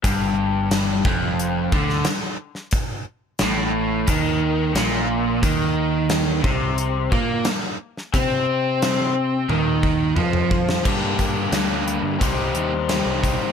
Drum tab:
CC |----------------|----------------|----------------|----------------|
HH |x---x---x---x---|x---x---x---x---|x---x---x---x---|x---x-----------|
SD |----o------oo--o|----o-------o---|----o-------o--o|----o----------o|
T1 |----------------|----------------|----------------|--------o-------|
T2 |----------------|----------------|----------------|------------oo--|
BD |o-----o---o-----|o-------o-------|o-----o---o-----|o---------o---o-|

CC |x---------------|
HH |--x-x-x-x-x-x-x-|
SD |----o-------o---|
T1 |----------------|
T2 |----------------|
BD |o-o-----o-----o-|